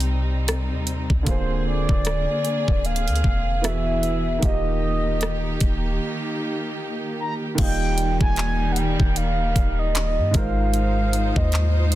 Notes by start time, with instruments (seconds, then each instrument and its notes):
Already playing: 808-style bass C2, grand piano C3 C4 D#4 A#4 D5, string section C3 G3 C4 D#4
0.00 closed hi-hat
0.48 cross-stick, closed hi-hat
0.71 808-style bass D#2
0.87 closed hi-hat
1.10 808-style bass C2, kick
1.23 808-style bass D1, grand piano D3 A#3 F4, string section D3 A#3 G#4, kick, closed hi-hat
1.28 grand piano G#4 C5, soft synth lead C5
1.67 soft synth lead D5
1.89 808-style bass D1, kick
2.05 cross-stick, closed hi-hat
2.45 closed hi-hat
2.68 808-style bass D1, kick
2.85 soft synth lead F5, closed hi-hat
2.96 closed hi-hat
3.08 808-style bass D2, closed hi-hat
3.16 closed hi-hat
3.24 808-style bass E1, kick
3.62 grand piano E3 B3 F#4 G#4 E5, string section E3 B3 E4, soft synth lead E5, cross-stick, closed hi-hat
4.03 closed hi-hat
4.39 grand piano D#3 A#3 F4, closed hi-hat
4.43 808-style bass D#1, string section D#3 A#3 D#4 G4, grand piano G4 D#5, soft synth lead D#5, kick
5.21 cross-stick, closed hi-hat
5.60 808-style bass D#1, kick, closed hi-hat
7.20 soft synth lead A#5
7.55 808-style bass D#1, grand piano D#3 A#3 F4, string section D#3 G3 A#3 D#4, kick, closed hi-hat, crash
7.59 grand piano G3 D#5, soft synth lead G5
7.98 closed hi-hat
8.21 soft synth lead G#5, kick
8.36 clap, closed hi-hat
8.72 soft synth lead F#5
8.76 soft synth lead G5, closed hi-hat
9.00 808-style bass D#1, kick
9.16 soft synth lead F5, closed hi-hat
9.56 808-style bass D#1, kick, closed hi-hat
9.79 soft synth lead D#5
9.95 clap, closed hi-hat
10.18 808-style bass G2
10.31 808-style bass G#1, grand piano G#2 G#3 F4, string section F4 C5, kick, closed hi-hat
10.35 string section G#3 D#4, grand piano A#4 C5, soft synth lead F5
10.74 closed hi-hat
11.13 closed hi-hat
11.36 808-style bass D#2, soft synth lead D#5, kick
11.52 clap, closed hi-hat
11.92 closed hi-hat